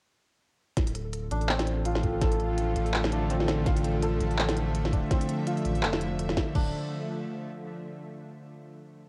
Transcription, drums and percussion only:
0.77 kick, snare, closed hi-hat
0.87 open hi-hat
0.95 closed hi-hat
1.13 closed hi-hat
1.31 closed hi-hat
1.41 open hi-hat
1.49 clap
1.59 snare, open hi-hat
1.67 closed hi-hat
1.85 closed hi-hat
1.95 snare
2.03 kick, closed hi-hat
2.21 kick, snare, closed hi-hat
2.32 open hi-hat
2.40 closed hi-hat
2.58 closed hi-hat
2.76 closed hi-hat
2.86 open hi-hat
2.94 clap
3.04 snare
3.12 closed hi-hat
3.30 closed hi-hat
3.40 snare
3.48 snare, closed hi-hat
3.66 kick, snare, closed hi-hat
3.76 open hi-hat
3.84 closed hi-hat
4.02 closed hi-hat
4.20 closed hi-hat
4.30 open hi-hat
4.38 clap
4.48 snare, open hi-hat
4.56 closed hi-hat
4.74 closed hi-hat
4.85 snare
4.93 kick, closed hi-hat
5.11 kick, snare, closed hi-hat
5.21 open hi-hat
5.29 closed hi-hat
5.47 closed hi-hat
5.57 open hi-hat
5.65 closed hi-hat
5.75 open hi-hat
5.83 clap
5.93 snare
6.01 closed hi-hat
6.19 closed hi-hat
6.29 snare
6.37 kick, snare, closed hi-hat
6.55 kick, crash

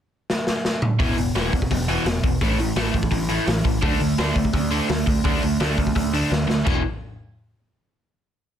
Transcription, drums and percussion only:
0.30 snare
0.47 snare
0.65 snare
0.82 mid tom
1.00 kick, open hi-hat
1.18 open hi-hat
1.36 snare, open hi-hat
1.53 kick, open hi-hat
1.62 kick
1.71 kick, open hi-hat
1.89 open hi-hat
2.06 snare, open hi-hat
2.24 kick, open hi-hat
2.41 kick, open hi-hat
2.59 open hi-hat
2.76 snare, open hi-hat
2.94 kick, open hi-hat
3.03 kick
3.12 kick, open hi-hat
3.29 open hi-hat
3.47 snare, open hi-hat
3.65 kick, open hi-hat
3.83 kick, open hi-hat
4.01 open hi-hat
4.18 snare, open hi-hat
4.36 kick, open hi-hat
4.45 kick
4.53 kick, open hi-hat
4.72 open hi-hat
4.89 snare, open hi-hat
5.07 kick, open hi-hat
5.25 kick, open hi-hat
5.43 open hi-hat
5.60 snare, open hi-hat
5.78 kick, open hi-hat
5.87 kick
5.96 kick, open hi-hat
6.14 open hi-hat
6.32 snare
6.50 snare
6.67 kick, crash

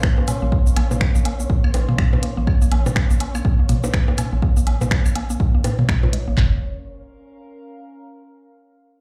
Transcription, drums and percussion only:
0.03 finger snap, kick
0.18 high bongo
0.28 closed hi-hat, mid tom, low woodblock, shaker
0.52 kick
0.67 shaker
0.76 closed hi-hat, high woodblock, low woodblock
0.91 mid tom, high bongo, shaker
1.01 finger snap, kick
1.15 shaker
1.25 closed hi-hat, low woodblock
1.40 shaker
1.50 kick
1.64 high woodblock
1.74 closed hi-hat, high bongo, shaker
1.89 mid tom
1.98 finger snap, kick
2.13 mid tom, high bongo
2.23 closed hi-hat
2.47 kick, high woodblock
2.62 shaker
2.72 closed hi-hat, low woodblock
2.86 mid tom, high bongo, shaker
2.96 finger snap, kick
3.10 shaker
3.20 closed hi-hat, low woodblock
3.35 high woodblock, shaker
3.45 kick
3.69 closed hi-hat, mid tom, shaker
3.84 high bongo, shaker
3.94 finger snap, kick
4.08 high bongo
4.18 closed hi-hat, mid tom, high woodblock, low woodblock, shaker
4.42 kick
4.57 shaker
4.67 closed hi-hat, low woodblock
4.81 mid tom, high bongo, shaker
4.91 finger snap, kick
5.06 high woodblock, shaker
5.16 closed hi-hat, low woodblock
5.30 shaker
5.40 kick
5.64 closed hi-hat, high bongo, shaker
5.79 mid tom
5.89 finger snap, kick, high woodblock
6.03 mid tom, high bongo
6.13 closed hi-hat
6.37 kick, clap, floor tom

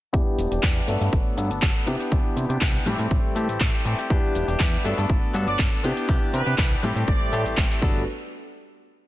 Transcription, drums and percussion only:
0.14 kick, closed hi-hat, shaker
0.39 open hi-hat, shaker
0.52 closed hi-hat, shaker
0.63 kick, clap, closed hi-hat, shaker
0.88 open hi-hat, shaker
1.01 closed hi-hat, shaker
1.13 kick, closed hi-hat, shaker
1.38 open hi-hat, shaker
1.51 closed hi-hat, shaker
1.62 kick, clap, closed hi-hat, shaker
1.87 open hi-hat, shaker
2.00 closed hi-hat, shaker
2.12 kick, closed hi-hat, shaker
2.37 open hi-hat, shaker
2.50 closed hi-hat, shaker
2.61 kick, clap, closed hi-hat, shaker
2.86 open hi-hat, shaker
2.99 closed hi-hat, shaker
3.11 kick, closed hi-hat, shaker
3.36 open hi-hat, shaker
3.49 closed hi-hat, shaker
3.60 kick, clap, closed hi-hat, shaker
3.74 clap
3.86 open hi-hat, shaker
3.99 closed hi-hat, shaker
4.10 kick, closed hi-hat, shaker
4.35 open hi-hat, shaker
4.48 closed hi-hat, shaker
4.60 kick, clap, closed hi-hat, shaker
4.85 open hi-hat, shaker
4.98 closed hi-hat, shaker
5.10 kick, closed hi-hat, shaker
5.34 open hi-hat, shaker
5.48 closed hi-hat, shaker
5.59 kick, clap, closed hi-hat, shaker
5.84 open hi-hat, shaker
5.97 closed hi-hat, shaker
6.09 kick, closed hi-hat, shaker
6.34 open hi-hat, shaker
6.47 closed hi-hat, shaker
6.58 kick, clap, closed hi-hat, shaker
6.83 open hi-hat, shaker
6.96 closed hi-hat, shaker
7.08 kick, closed hi-hat, shaker
7.33 open hi-hat, shaker
7.46 closed hi-hat, shaker
7.57 kick, clap, closed hi-hat, shaker
7.70 clap
7.82 kick

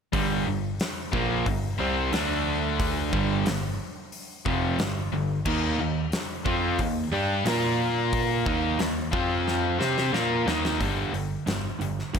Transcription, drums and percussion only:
0.13 kick, open hi-hat
0.80 snare, open hi-hat
1.13 kick
1.46 kick, open hi-hat
2.13 snare, open hi-hat
2.80 kick, open hi-hat
3.13 kick
3.46 snare, open hi-hat
4.12 open hi-hat
4.46 kick
4.79 snare, open hi-hat
5.45 kick, crash
6.12 snare, open hi-hat
6.46 kick
6.79 kick, open hi-hat
7.46 snare, open hi-hat
8.13 kick, open hi-hat
8.46 kick
8.79 snare, open hi-hat
9.13 kick
9.48 snare
9.81 snare
9.98 snare
10.14 snare
10.48 snare
10.65 snare
10.81 kick, open hi-hat
11.14 open hi-hat
11.47 snare, open hi-hat
11.81 open hi-hat
11.99 snare
12.15 kick, open hi-hat

